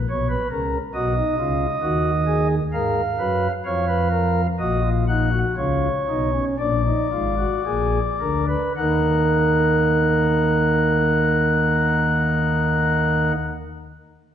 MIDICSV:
0, 0, Header, 1, 2, 480
1, 0, Start_track
1, 0, Key_signature, -6, "minor"
1, 0, Tempo, 872093
1, 521, Time_signature, 4, 2, 24, 8
1, 1006, Tempo, 909091
1, 1966, Tempo, 964630
1, 2926, Tempo, 1018676
1, 3406, Tempo, 1060071
1, 3886, Tempo, 1115242
1, 4366, Tempo, 1140684
1, 6714, End_track
2, 0, Start_track
2, 0, Title_t, "Pipe organ"
2, 0, Program_c, 0, 19
2, 49, Note_on_c, 0, 35, 73
2, 50, Note_on_c, 0, 47, 70
2, 53, Note_on_c, 0, 73, 84
2, 151, Note_off_c, 0, 73, 0
2, 162, Note_on_c, 0, 71, 77
2, 194, Note_off_c, 0, 35, 0
2, 195, Note_off_c, 0, 47, 0
2, 264, Note_off_c, 0, 71, 0
2, 279, Note_on_c, 0, 49, 62
2, 279, Note_on_c, 0, 70, 75
2, 281, Note_on_c, 0, 37, 64
2, 428, Note_off_c, 0, 49, 0
2, 428, Note_off_c, 0, 70, 0
2, 429, Note_off_c, 0, 37, 0
2, 519, Note_on_c, 0, 66, 81
2, 519, Note_on_c, 0, 75, 71
2, 521, Note_on_c, 0, 35, 77
2, 521, Note_on_c, 0, 47, 77
2, 623, Note_off_c, 0, 66, 0
2, 642, Note_on_c, 0, 63, 79
2, 671, Note_off_c, 0, 35, 0
2, 671, Note_off_c, 0, 47, 0
2, 746, Note_off_c, 0, 63, 0
2, 762, Note_on_c, 0, 49, 77
2, 763, Note_on_c, 0, 37, 67
2, 764, Note_on_c, 0, 65, 78
2, 913, Note_off_c, 0, 49, 0
2, 914, Note_off_c, 0, 37, 0
2, 915, Note_off_c, 0, 65, 0
2, 1000, Note_on_c, 0, 51, 77
2, 1002, Note_on_c, 0, 39, 73
2, 1003, Note_on_c, 0, 66, 77
2, 1151, Note_off_c, 0, 66, 0
2, 1239, Note_on_c, 0, 68, 84
2, 1348, Note_off_c, 0, 75, 0
2, 1388, Note_off_c, 0, 68, 0
2, 1411, Note_off_c, 0, 51, 0
2, 1412, Note_off_c, 0, 39, 0
2, 1481, Note_on_c, 0, 56, 79
2, 1483, Note_on_c, 0, 77, 74
2, 1484, Note_on_c, 0, 44, 82
2, 1485, Note_on_c, 0, 70, 85
2, 1630, Note_off_c, 0, 56, 0
2, 1632, Note_off_c, 0, 44, 0
2, 1633, Note_off_c, 0, 70, 0
2, 1724, Note_on_c, 0, 54, 64
2, 1725, Note_on_c, 0, 42, 66
2, 1727, Note_on_c, 0, 71, 76
2, 1875, Note_off_c, 0, 42, 0
2, 1875, Note_off_c, 0, 54, 0
2, 1877, Note_off_c, 0, 71, 0
2, 1899, Note_off_c, 0, 77, 0
2, 1967, Note_on_c, 0, 41, 75
2, 1968, Note_on_c, 0, 77, 75
2, 1969, Note_on_c, 0, 73, 83
2, 1970, Note_on_c, 0, 53, 75
2, 2068, Note_off_c, 0, 73, 0
2, 2083, Note_on_c, 0, 71, 79
2, 2184, Note_off_c, 0, 71, 0
2, 2199, Note_on_c, 0, 70, 77
2, 2347, Note_off_c, 0, 70, 0
2, 2373, Note_off_c, 0, 41, 0
2, 2373, Note_off_c, 0, 77, 0
2, 2374, Note_off_c, 0, 53, 0
2, 2435, Note_on_c, 0, 34, 73
2, 2437, Note_on_c, 0, 66, 79
2, 2438, Note_on_c, 0, 75, 69
2, 2439, Note_on_c, 0, 46, 74
2, 2541, Note_off_c, 0, 66, 0
2, 2558, Note_on_c, 0, 65, 69
2, 2588, Note_off_c, 0, 75, 0
2, 2662, Note_off_c, 0, 65, 0
2, 2680, Note_on_c, 0, 78, 75
2, 2683, Note_on_c, 0, 63, 76
2, 2786, Note_off_c, 0, 63, 0
2, 2799, Note_on_c, 0, 66, 66
2, 2832, Note_off_c, 0, 78, 0
2, 2855, Note_off_c, 0, 34, 0
2, 2858, Note_off_c, 0, 46, 0
2, 2906, Note_off_c, 0, 66, 0
2, 2922, Note_on_c, 0, 73, 69
2, 2923, Note_on_c, 0, 37, 73
2, 2924, Note_on_c, 0, 49, 71
2, 2925, Note_on_c, 0, 65, 67
2, 3071, Note_off_c, 0, 37, 0
2, 3071, Note_off_c, 0, 49, 0
2, 3072, Note_off_c, 0, 65, 0
2, 3165, Note_on_c, 0, 35, 74
2, 3165, Note_on_c, 0, 47, 69
2, 3167, Note_on_c, 0, 63, 67
2, 3269, Note_off_c, 0, 63, 0
2, 3285, Note_on_c, 0, 61, 70
2, 3314, Note_off_c, 0, 47, 0
2, 3315, Note_off_c, 0, 35, 0
2, 3336, Note_off_c, 0, 73, 0
2, 3389, Note_off_c, 0, 61, 0
2, 3404, Note_on_c, 0, 34, 77
2, 3404, Note_on_c, 0, 46, 74
2, 3404, Note_on_c, 0, 62, 75
2, 3404, Note_on_c, 0, 74, 71
2, 3506, Note_off_c, 0, 62, 0
2, 3526, Note_on_c, 0, 63, 67
2, 3552, Note_off_c, 0, 34, 0
2, 3552, Note_off_c, 0, 46, 0
2, 3627, Note_off_c, 0, 63, 0
2, 3644, Note_on_c, 0, 65, 68
2, 3645, Note_on_c, 0, 44, 59
2, 3646, Note_on_c, 0, 32, 59
2, 3747, Note_off_c, 0, 65, 0
2, 3763, Note_on_c, 0, 66, 74
2, 3795, Note_off_c, 0, 32, 0
2, 3795, Note_off_c, 0, 44, 0
2, 3868, Note_off_c, 0, 66, 0
2, 3885, Note_on_c, 0, 46, 72
2, 3888, Note_on_c, 0, 34, 67
2, 3888, Note_on_c, 0, 68, 75
2, 4032, Note_off_c, 0, 46, 0
2, 4034, Note_off_c, 0, 34, 0
2, 4034, Note_off_c, 0, 68, 0
2, 4121, Note_on_c, 0, 38, 64
2, 4122, Note_on_c, 0, 70, 67
2, 4123, Note_on_c, 0, 50, 62
2, 4226, Note_off_c, 0, 70, 0
2, 4234, Note_off_c, 0, 74, 0
2, 4243, Note_on_c, 0, 71, 71
2, 4272, Note_off_c, 0, 38, 0
2, 4274, Note_off_c, 0, 50, 0
2, 4348, Note_off_c, 0, 71, 0
2, 4362, Note_on_c, 0, 39, 64
2, 4364, Note_on_c, 0, 51, 67
2, 4365, Note_on_c, 0, 70, 60
2, 4366, Note_on_c, 0, 78, 65
2, 4377, Note_on_c, 0, 63, 57
2, 4378, Note_on_c, 0, 58, 58
2, 6279, Note_off_c, 0, 39, 0
2, 6280, Note_off_c, 0, 51, 0
2, 6281, Note_off_c, 0, 70, 0
2, 6282, Note_off_c, 0, 78, 0
2, 6293, Note_off_c, 0, 63, 0
2, 6295, Note_off_c, 0, 58, 0
2, 6714, End_track
0, 0, End_of_file